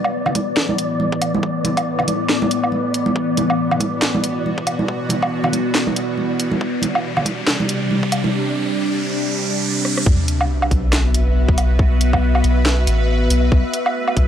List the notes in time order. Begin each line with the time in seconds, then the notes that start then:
Already playing: A2 E3 B3 D5
0.04 low woodblock
0.26 low conga, low woodblock
0.35 kick, closed hi-hat, high conga
0.57 snare
0.69 high conga
0.78 closed hi-hat
1.00 high conga
1.12 kick
1.22 closed hi-hat, low woodblock
1.35 high conga
1.43 kick
1.65 closed hi-hat, high conga, low conga
1.77 kick, closed hi-hat, low woodblock
1.99 low conga, low woodblock
2.08 closed hi-hat, high conga
2.29 snare
2.42 high conga
2.51 closed hi-hat
2.64 low woodblock
2.72 high conga
2.94 closed hi-hat
3.06 high conga
3.16 B2 F#4, kick, riser
3.37 closed hi-hat, high conga, low conga
3.50 low woodblock
3.71 low conga, low woodblock
3.80 kick, closed hi-hat, high conga
4.02 snare, clap
4.15 high conga
4.24 closed hi-hat
4.46 high conga
4.58 kick
4.67 closed hi-hat, low woodblock
4.79 high conga
4.88 kick
5.09 closed hi-hat, high conga, low conga
5.22 kick, low woodblock
5.44 low conga, low woodblock
5.53 closed hi-hat, high conga
5.75 snare, clap
5.87 high conga
5.96 closed hi-hat
6.17 high conga
6.40 closed hi-hat
6.51 high conga
6.61 C3 G3 D4, kick
6.82 closed hi-hat, high conga, low conga
6.95 low woodblock
7.17 low conga, low woodblock
7.25 kick, closed hi-hat, high conga
7.47 snare, clap
7.60 high conga
7.69 closed hi-hat
7.91 high conga
8.03 kick
8.12 closed hi-hat, low woodblock
8.24 high conga
9.85 cross-stick
9.97 cross-stick
10.06 B1 B3 F#4 B4 E5, kick, sub drop
10.28 closed hi-hat
10.41 low woodblock
10.62 low woodblock
10.71 B1, kick, open hi-hat
10.93 snare, clap
11.14 closed hi-hat
11.48 kick
11.58 open hi-hat, low woodblock
11.79 kick
12.01 closed hi-hat
12.13 kick, low woodblock
12.35 low woodblock
12.44 B1, open hi-hat
12.66 snare, clap
12.87 A1, closed hi-hat
13.30 B1, open hi-hat
13.52 B1 A3 E4, kick
13.74 closed hi-hat
13.86 low woodblock
14.08 low woodblock
14.17 B1, kick, open hi-hat